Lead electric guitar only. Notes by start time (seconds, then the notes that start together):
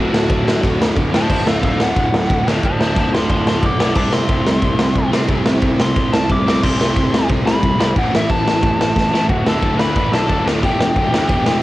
0.00 F#4
0.16 F#4
1.15 C5 A5
1.30 C5 A5
1.47 A4 F5
1.65 A4 F5
1.82 F#5
2.65 C5 A5
2.82 C5 A5
2.99 C5 A5
3.14 A5 C6
3.31 A5 C6
3.48 A5 C6
3.65 F#5 D6
3.81 F#5 D6
3.96 A5 D6
4.14 C6
5.82 C6
6.13 A5
6.32 D6
6.50 D6
6.63 C6
7.46 B5
7.98 F#5
8.16 E5
8.30 A5
9.30 F#4 F#5
9.47 A4 A5
9.78 B4 B5
9.96 B4 B5
10.12 A4 A5
10.63 G4 G5